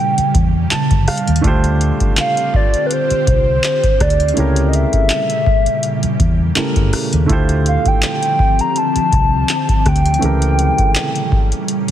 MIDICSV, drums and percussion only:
0, 0, Header, 1, 2, 480
1, 0, Start_track
1, 0, Key_signature, -1, "minor"
1, 0, Tempo, 731707
1, 946, Time_signature, 4, 2, 24, 8
1, 7814, End_track
2, 0, Start_track
2, 0, Title_t, "Drums"
2, 117, Note_on_c, 9, 42, 48
2, 183, Note_off_c, 9, 42, 0
2, 226, Note_on_c, 9, 36, 92
2, 228, Note_on_c, 9, 42, 66
2, 292, Note_off_c, 9, 36, 0
2, 293, Note_off_c, 9, 42, 0
2, 466, Note_on_c, 9, 39, 106
2, 467, Note_on_c, 9, 42, 67
2, 532, Note_off_c, 9, 39, 0
2, 532, Note_off_c, 9, 42, 0
2, 595, Note_on_c, 9, 36, 91
2, 595, Note_on_c, 9, 42, 43
2, 661, Note_off_c, 9, 36, 0
2, 661, Note_off_c, 9, 42, 0
2, 706, Note_on_c, 9, 42, 61
2, 706, Note_on_c, 9, 46, 72
2, 708, Note_on_c, 9, 37, 83
2, 771, Note_off_c, 9, 42, 0
2, 771, Note_on_c, 9, 42, 58
2, 772, Note_off_c, 9, 46, 0
2, 774, Note_off_c, 9, 37, 0
2, 836, Note_off_c, 9, 42, 0
2, 836, Note_on_c, 9, 42, 55
2, 891, Note_off_c, 9, 42, 0
2, 891, Note_on_c, 9, 42, 57
2, 946, Note_off_c, 9, 42, 0
2, 946, Note_on_c, 9, 36, 118
2, 946, Note_on_c, 9, 42, 64
2, 1011, Note_off_c, 9, 36, 0
2, 1012, Note_off_c, 9, 42, 0
2, 1075, Note_on_c, 9, 42, 56
2, 1140, Note_off_c, 9, 42, 0
2, 1186, Note_on_c, 9, 42, 60
2, 1252, Note_off_c, 9, 42, 0
2, 1315, Note_on_c, 9, 36, 83
2, 1315, Note_on_c, 9, 42, 39
2, 1380, Note_off_c, 9, 42, 0
2, 1381, Note_off_c, 9, 36, 0
2, 1425, Note_on_c, 9, 39, 117
2, 1425, Note_on_c, 9, 42, 76
2, 1490, Note_off_c, 9, 39, 0
2, 1491, Note_off_c, 9, 42, 0
2, 1556, Note_on_c, 9, 42, 45
2, 1622, Note_off_c, 9, 42, 0
2, 1666, Note_on_c, 9, 36, 98
2, 1732, Note_off_c, 9, 36, 0
2, 1795, Note_on_c, 9, 42, 51
2, 1861, Note_off_c, 9, 42, 0
2, 1906, Note_on_c, 9, 42, 66
2, 1972, Note_off_c, 9, 42, 0
2, 2037, Note_on_c, 9, 42, 43
2, 2102, Note_off_c, 9, 42, 0
2, 2146, Note_on_c, 9, 36, 93
2, 2147, Note_on_c, 9, 42, 69
2, 2212, Note_off_c, 9, 36, 0
2, 2213, Note_off_c, 9, 42, 0
2, 2386, Note_on_c, 9, 39, 107
2, 2386, Note_on_c, 9, 42, 71
2, 2451, Note_off_c, 9, 39, 0
2, 2452, Note_off_c, 9, 42, 0
2, 2516, Note_on_c, 9, 36, 92
2, 2516, Note_on_c, 9, 42, 43
2, 2581, Note_off_c, 9, 36, 0
2, 2582, Note_off_c, 9, 42, 0
2, 2626, Note_on_c, 9, 36, 109
2, 2626, Note_on_c, 9, 42, 61
2, 2629, Note_on_c, 9, 37, 84
2, 2691, Note_off_c, 9, 42, 0
2, 2691, Note_on_c, 9, 42, 58
2, 2692, Note_off_c, 9, 36, 0
2, 2695, Note_off_c, 9, 37, 0
2, 2755, Note_off_c, 9, 42, 0
2, 2755, Note_on_c, 9, 42, 56
2, 2811, Note_off_c, 9, 42, 0
2, 2811, Note_on_c, 9, 42, 55
2, 2865, Note_off_c, 9, 42, 0
2, 2865, Note_on_c, 9, 42, 66
2, 2931, Note_off_c, 9, 42, 0
2, 2994, Note_on_c, 9, 42, 56
2, 3059, Note_off_c, 9, 42, 0
2, 3106, Note_on_c, 9, 42, 58
2, 3171, Note_off_c, 9, 42, 0
2, 3233, Note_on_c, 9, 42, 40
2, 3235, Note_on_c, 9, 36, 81
2, 3299, Note_off_c, 9, 42, 0
2, 3300, Note_off_c, 9, 36, 0
2, 3344, Note_on_c, 9, 39, 121
2, 3344, Note_on_c, 9, 42, 74
2, 3409, Note_off_c, 9, 39, 0
2, 3410, Note_off_c, 9, 42, 0
2, 3475, Note_on_c, 9, 42, 47
2, 3540, Note_off_c, 9, 42, 0
2, 3585, Note_on_c, 9, 36, 103
2, 3651, Note_off_c, 9, 36, 0
2, 3714, Note_on_c, 9, 42, 50
2, 3780, Note_off_c, 9, 42, 0
2, 3824, Note_on_c, 9, 42, 65
2, 3890, Note_off_c, 9, 42, 0
2, 3955, Note_on_c, 9, 42, 47
2, 4020, Note_off_c, 9, 42, 0
2, 4065, Note_on_c, 9, 36, 92
2, 4066, Note_on_c, 9, 42, 65
2, 4131, Note_off_c, 9, 36, 0
2, 4132, Note_off_c, 9, 42, 0
2, 4304, Note_on_c, 9, 39, 114
2, 4305, Note_on_c, 9, 42, 69
2, 4370, Note_off_c, 9, 39, 0
2, 4370, Note_off_c, 9, 42, 0
2, 4434, Note_on_c, 9, 42, 41
2, 4435, Note_on_c, 9, 36, 90
2, 4500, Note_off_c, 9, 42, 0
2, 4501, Note_off_c, 9, 36, 0
2, 4546, Note_on_c, 9, 42, 56
2, 4546, Note_on_c, 9, 46, 79
2, 4548, Note_on_c, 9, 37, 83
2, 4611, Note_off_c, 9, 42, 0
2, 4612, Note_off_c, 9, 46, 0
2, 4614, Note_off_c, 9, 37, 0
2, 4675, Note_on_c, 9, 42, 55
2, 4741, Note_off_c, 9, 42, 0
2, 4785, Note_on_c, 9, 36, 117
2, 4785, Note_on_c, 9, 42, 65
2, 4851, Note_off_c, 9, 36, 0
2, 4851, Note_off_c, 9, 42, 0
2, 4913, Note_on_c, 9, 42, 54
2, 4979, Note_off_c, 9, 42, 0
2, 5024, Note_on_c, 9, 42, 56
2, 5090, Note_off_c, 9, 42, 0
2, 5153, Note_on_c, 9, 42, 39
2, 5155, Note_on_c, 9, 36, 85
2, 5219, Note_off_c, 9, 42, 0
2, 5221, Note_off_c, 9, 36, 0
2, 5264, Note_on_c, 9, 39, 112
2, 5264, Note_on_c, 9, 42, 74
2, 5329, Note_off_c, 9, 39, 0
2, 5330, Note_off_c, 9, 42, 0
2, 5396, Note_on_c, 9, 42, 45
2, 5462, Note_off_c, 9, 42, 0
2, 5505, Note_on_c, 9, 36, 96
2, 5571, Note_off_c, 9, 36, 0
2, 5635, Note_on_c, 9, 42, 50
2, 5701, Note_off_c, 9, 42, 0
2, 5745, Note_on_c, 9, 42, 67
2, 5811, Note_off_c, 9, 42, 0
2, 5875, Note_on_c, 9, 42, 44
2, 5941, Note_off_c, 9, 42, 0
2, 5986, Note_on_c, 9, 36, 96
2, 5986, Note_on_c, 9, 42, 72
2, 6051, Note_off_c, 9, 36, 0
2, 6052, Note_off_c, 9, 42, 0
2, 6226, Note_on_c, 9, 39, 112
2, 6226, Note_on_c, 9, 42, 71
2, 6292, Note_off_c, 9, 39, 0
2, 6292, Note_off_c, 9, 42, 0
2, 6356, Note_on_c, 9, 36, 89
2, 6356, Note_on_c, 9, 42, 45
2, 6421, Note_off_c, 9, 36, 0
2, 6422, Note_off_c, 9, 42, 0
2, 6466, Note_on_c, 9, 36, 104
2, 6466, Note_on_c, 9, 42, 61
2, 6468, Note_on_c, 9, 37, 84
2, 6532, Note_off_c, 9, 36, 0
2, 6532, Note_off_c, 9, 42, 0
2, 6532, Note_on_c, 9, 42, 60
2, 6534, Note_off_c, 9, 37, 0
2, 6596, Note_off_c, 9, 42, 0
2, 6596, Note_on_c, 9, 42, 56
2, 6651, Note_off_c, 9, 42, 0
2, 6651, Note_on_c, 9, 42, 58
2, 6707, Note_off_c, 9, 42, 0
2, 6707, Note_on_c, 9, 42, 65
2, 6773, Note_off_c, 9, 42, 0
2, 6835, Note_on_c, 9, 42, 55
2, 6900, Note_off_c, 9, 42, 0
2, 6945, Note_on_c, 9, 42, 60
2, 7011, Note_off_c, 9, 42, 0
2, 7075, Note_on_c, 9, 36, 84
2, 7075, Note_on_c, 9, 42, 42
2, 7140, Note_off_c, 9, 42, 0
2, 7141, Note_off_c, 9, 36, 0
2, 7185, Note_on_c, 9, 39, 122
2, 7186, Note_on_c, 9, 42, 76
2, 7251, Note_off_c, 9, 39, 0
2, 7251, Note_off_c, 9, 42, 0
2, 7318, Note_on_c, 9, 42, 44
2, 7383, Note_off_c, 9, 42, 0
2, 7426, Note_on_c, 9, 36, 98
2, 7492, Note_off_c, 9, 36, 0
2, 7556, Note_on_c, 9, 42, 48
2, 7622, Note_off_c, 9, 42, 0
2, 7665, Note_on_c, 9, 42, 71
2, 7730, Note_off_c, 9, 42, 0
2, 7814, End_track
0, 0, End_of_file